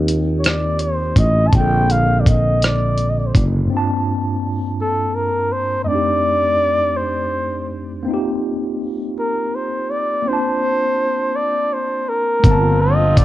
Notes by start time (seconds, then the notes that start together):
Already playing: D#2 A#3 C4 D#4 F4 G4
0.08 closed hi-hat
0.39 C#5
0.44 D5, cross-stick, closed hi-hat
0.79 C5, closed hi-hat
1.16 A1 D#5, kick, closed hi-hat
1.48 A#3 C4 A5
1.53 A#1 D3 F4 G5, kick, closed hi-hat
1.59 A4
1.90 F5, closed hi-hat
2.20 D5
2.26 D#5, kick, closed hi-hat
2.62 D5, cross-stick, closed hi-hat
2.98 closed hi-hat
3.10 D#5
3.18 D5
3.27 C5
3.35 F#1 D5, kick, closed hi-hat
3.65 G2 A#3
3.70 C4 D4
3.74 F4 A5
4.81 A4
5.15 A#4
5.52 C5
5.84 F2 A3 C4 D#5
5.88 D4 D5
5.92 D#4 G4
6.97 C5
8.03 A#3 C4
8.08 D#4 F4
8.14 G4
9.19 A#4
9.55 C5
9.90 D5
10.22 A#3 C4
10.28 D4 F4 C5
10.33 A5
11.36 D5
11.73 C5
12.09 A#4
12.40 A3 C4
12.44 G1 D3 F3 A#3 C4 F4, kick, closed hi-hat
12.48 F4 A5
12.82 D#5
13.17 D5, kick, closed hi-hat